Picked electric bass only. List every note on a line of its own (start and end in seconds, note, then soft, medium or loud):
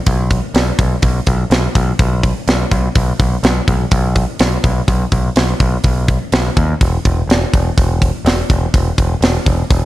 0.07 0.39 B1 medium
0.54 0.71 B1 medium
0.79 0.95 B1 medium
1.02 1.19 B1 medium
1.27 1.43 B1 medium
1.50 1.67 B1 medium
1.75 1.92 B1 medium
1.99 2.32 B1 medium
2.48 2.64 B1 medium
2.72 2.88 B1 medium
2.96 3.12 B1 medium
3.19 3.36 B1 medium
3.43 3.59 B1 medium
3.68 3.84 B1 medium
3.92 4.24 B1 medium
4.40 4.56 B1 medium
4.64 4.80 B1 medium
4.88 5.04 B1 medium
5.12 5.28 B1 medium
5.36 5.52 B1 medium
5.60 5.76 B1 medium
5.84 6.17 B1 medium
6.33 6.49 B1 medium
6.57 6.73 D#2 medium
6.81 6.97 E1 medium
7.05 7.21 E1 medium
7.27 7.44 E1 medium
7.53 7.70 E1 medium
7.77 8.10 E1 medium
8.25 8.41 E1 medium
8.50 8.66 E1 medium
8.74 8.90 E1 medium
8.98 9.14 E1 medium
9.21 9.37 E1 medium
9.46 9.62 E1 medium
9.70 9.85 E1 medium